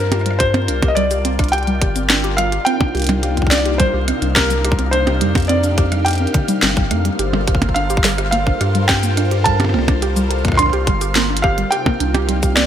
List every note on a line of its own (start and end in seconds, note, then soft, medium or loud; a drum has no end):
0.00 0.70 G2 medium
0.00 2.63 G3 medium
0.00 4.89 F4 medium
0.00 0.41 A#4 medium
0.00 2.63 A#4 medium
0.00 0.38 C5 medium
0.00 12.66 F5 medium
0.00 2.63 A5 medium
0.12 0.25 G4 loud
0.12 cross-stick soft
0.12 closed hi-hat medium
0.12 percussion blips medium
0.21 cross-stick soft
0.26 0.35 G3 medium
0.26 closed hi-hat medium
0.31 cross-stick soft
0.39 0.49 G4 medium
0.39 0.90 C5 loud
0.39 2.64 D5 medium
0.39 kick loud
0.39 closed hi-hat medium
0.54 0.64 C4 medium
0.54 closed hi-hat soft
0.54 percussion blips medium
0.68 1.83 C2 medium
0.68 0.78 D4 medium
0.68 closed hi-hat medium
0.82 0.96 G4 loud
0.82 kick loud
0.82 closed hi-hat medium
0.82 percussion blips medium
0.88 0.96 D#5 medium
0.95 1.06 G3 medium
0.95 1.49 D5 loud
0.95 closed hi-hat medium
1.11 1.20 G4 medium
1.11 closed hi-hat soft
1.11 shaker medium
1.25 1.34 C4 medium
1.25 closed hi-hat medium
1.39 1.48 D4 medium
1.39 kick loud
1.39 cross-stick medium
1.39 closed hi-hat soft
1.44 closed hi-hat soft
1.49 2.33 G5 loud
1.49 closed hi-hat soft
1.53 1.67 G4 loud
1.53 closed hi-hat medium
1.63 closed hi-hat soft
1.67 1.77 G3 medium
1.67 closed hi-hat soft
1.82 2.59 G1 loud
1.82 1.91 G4 medium
1.82 kick loud
1.82 closed hi-hat medium
1.96 2.05 C4 medium
1.96 closed hi-hat medium
1.96 shaker medium
2.10 2.19 D4 medium
2.10 snare loud
2.10 closed hi-hat medium
2.24 2.37 G4 loud
2.24 closed hi-hat soft
2.37 2.48 G3 medium
2.37 2.67 F5 loud
2.37 cross-stick medium
2.37 closed hi-hat medium
2.52 2.62 G4 medium
2.52 closed hi-hat medium
2.65 7.15 C3 medium
2.65 7.15 A#3 medium
2.65 2.76 C4 medium
2.65 7.15 D4 medium
2.65 7.15 D#4 medium
2.65 3.53 G5 loud
2.65 closed hi-hat medium
2.81 2.90 D4 medium
2.81 kick loud
2.81 percussion blips medium
2.95 3.86 C2 medium
2.95 3.08 G4 loud
2.95 closed hi-hat soft
2.97 closed hi-hat soft
3.00 closed hi-hat soft
3.02 closed hi-hat medium
3.04 closed hi-hat medium
3.07 3.18 G3 medium
3.07 closed hi-hat medium
3.09 closed hi-hat medium
3.09 percussion blips medium
3.23 3.32 G4 medium
3.23 closed hi-hat medium
3.37 3.47 C4 medium
3.37 kick soft
3.37 closed hi-hat soft
3.42 kick medium
3.47 3.80 D5 medium
3.47 kick medium
3.51 3.61 D4 medium
3.51 snare loud
3.51 closed hi-hat medium
3.51 shaker medium
3.66 3.79 G4 loud
3.66 closed hi-hat medium
3.78 3.89 G3 medium
3.78 4.37 C5 medium
3.78 kick loud
3.78 closed hi-hat medium
3.94 4.13 C2 medium
3.94 4.03 G4 medium
4.08 4.17 C4 medium
4.08 cross-stick medium
4.08 closed hi-hat medium
4.22 5.23 C2 loud
4.22 4.32 D4 medium
4.22 closed hi-hat medium
4.35 4.50 G4 loud
4.35 4.94 A#4 medium
4.35 kick loud
4.35 snare loud
4.35 closed hi-hat medium
4.50 4.60 G3 medium
4.50 closed hi-hat soft
4.50 shaker medium
4.65 4.74 G4 medium
4.65 cross-stick medium
4.65 closed hi-hat medium
4.72 kick loud
4.79 4.88 C4 medium
4.79 closed hi-hat medium
4.91 5.02 D4 medium
4.91 7.17 G4 medium
4.91 5.50 C5 loud
4.91 closed hi-hat medium
5.07 5.21 G4 medium
5.07 closed hi-hat soft
5.07 percussion blips medium
5.21 6.27 F2 medium
5.21 5.31 G3 medium
5.21 closed hi-hat medium
5.35 5.45 G4 medium
5.35 kick loud
5.35 closed hi-hat soft
5.35 percussion blips medium
5.38 closed hi-hat soft
5.40 closed hi-hat soft
5.42 closed hi-hat soft
5.45 closed hi-hat soft
5.47 6.01 D5 medium
5.47 closed hi-hat soft
5.49 5.59 C4 medium
5.49 closed hi-hat medium
5.64 5.73 D4 medium
5.64 closed hi-hat soft
5.64 shaker medium
5.78 5.91 G4 loud
5.78 kick loud
5.78 closed hi-hat medium
5.92 6.01 G3 medium
5.92 cross-stick medium
5.92 closed hi-hat medium
6.05 6.15 G4 medium
6.05 6.86 G5 medium
6.05 closed hi-hat medium
6.08 closed hi-hat medium
6.11 closed hi-hat soft
6.15 closed hi-hat soft
6.18 6.30 C4 medium
6.18 closed hi-hat soft
6.27 closed hi-hat soft
6.34 6.40 D3 medium
6.34 kick loud
6.34 closed hi-hat medium
6.48 6.58 G3 loud
6.48 closed hi-hat medium
6.48 shaker medium
6.63 6.93 G1 medium
6.63 6.72 G3 medium
6.63 snare loud
6.63 closed hi-hat medium
6.77 6.86 G2 medium
6.77 kick loud
6.77 closed hi-hat soft
6.91 7.10 F2 medium
6.91 7.00 A3 medium
6.91 cross-stick medium
6.91 closed hi-hat medium
7.05 7.15 G3 medium
7.05 closed hi-hat medium
7.19 8.53 G1 loud
7.19 11.68 G3 medium
7.19 12.66 F4 medium
7.19 7.33 G4 loud
7.19 11.68 A4 medium
7.19 11.68 A#4 medium
7.19 11.68 C5 medium
7.19 closed hi-hat medium
7.33 7.43 G3 medium
7.33 percussion blips medium
7.48 7.57 G4 medium
7.48 kick loud
7.48 closed hi-hat medium
7.55 kick medium
7.62 7.71 A#3 medium
7.62 kick medium
7.62 closed hi-hat soft
7.62 percussion blips medium
7.69 kick medium
7.74 7.85 D4 medium
7.74 8.28 F5 medium
7.74 closed hi-hat medium
7.90 8.03 G4 loud
7.90 closed hi-hat soft
7.90 shaker medium
7.97 kick loud
8.04 8.14 G3 medium
8.04 snare loud
8.04 closed hi-hat medium
8.18 8.28 G4 medium
8.18 cross-stick medium
8.18 closed hi-hat soft
8.31 8.42 A#3 medium
8.31 8.90 F5 loud
8.31 closed hi-hat medium
8.47 8.56 D4 medium
8.47 kick loud
8.61 9.76 G2 medium
8.61 8.74 G4 loud
8.61 cross-stick medium
8.61 closed hi-hat medium
8.75 8.84 G3 medium
8.75 closed hi-hat medium
8.88 8.98 G4 medium
8.88 9.47 G5 medium
8.88 kick loud
8.88 snare loud
8.88 closed hi-hat medium
9.03 9.13 A#3 medium
9.03 closed hi-hat soft
9.03 shaker medium
9.17 9.27 D4 medium
9.17 cross-stick medium
9.17 closed hi-hat medium
9.31 9.45 G4 loud
9.31 closed hi-hat medium
9.44 9.55 G3 medium
9.44 10.62 A5 loud
9.44 kick loud
9.44 closed hi-hat medium
9.60 9.69 G4 medium
9.60 closed hi-hat soft
9.60 percussion blips medium
9.64 percussion blips medium
9.69 percussion blips medium
9.74 10.89 C2 medium
9.74 9.83 A#3 medium
9.74 percussion blips medium
9.79 percussion blips soft
9.83 percussion blips soft
9.88 9.97 D4 medium
9.88 kick loud
9.88 closed hi-hat soft
9.88 percussion blips medium
10.02 10.16 G4 loud
10.02 closed hi-hat medium
10.16 10.26 G3 medium
10.16 closed hi-hat soft
10.16 shaker medium
10.31 10.40 G4 medium
10.31 closed hi-hat medium
10.45 10.54 A#3 medium
10.45 kick loud
10.45 cross-stick soft
10.45 closed hi-hat soft
10.47 kick medium
10.47 cross-stick soft
10.50 kick medium
10.50 cross-stick soft
10.52 cross-stick soft
10.54 kick medium
10.54 cross-stick soft
10.57 10.68 D4 medium
10.57 11.39 C6 loud
10.57 kick soft
10.57 cross-stick medium
10.57 closed hi-hat medium
10.62 kick soft
10.66 kick soft
10.69 10.87 G4 loud
10.69 kick soft
10.69 closed hi-hat soft
10.87 11.65 G1 loud
10.87 10.97 G3 medium
10.87 kick loud
10.87 closed hi-hat medium
11.01 11.11 G4 medium
11.01 closed hi-hat soft
11.01 shaker medium
11.15 11.25 A#3 medium
11.15 snare loud
11.15 closed hi-hat medium
11.30 11.39 D4 medium
11.37 closed hi-hat medium
11.42 11.57 G4 loud
11.42 11.72 F5 loud
11.42 kick loud
11.42 cross-stick medium
11.58 11.67 G3 medium
11.58 closed hi-hat medium
11.71 12.66 C3 medium
11.71 12.66 A#3 medium
11.71 12.66 C4 medium
11.71 12.66 D#4 medium
11.71 11.81 G4 medium
11.71 12.52 G5 loud
11.71 closed hi-hat medium
11.86 11.96 A#3 medium
11.86 kick loud
11.86 percussion blips loud
12.00 12.66 C2 medium
12.00 12.10 D4 medium
12.00 closed hi-hat medium
12.15 12.28 G4 loud
12.15 closed hi-hat medium
12.15 percussion blips loud
12.29 12.38 G3 medium
12.29 closed hi-hat medium
12.43 12.52 G4 medium
12.43 kick loud
12.43 closed hi-hat soft
12.43 shaker medium
12.55 12.66 A#3 medium
12.55 12.66 D5 medium
12.55 snare loud
12.55 closed hi-hat medium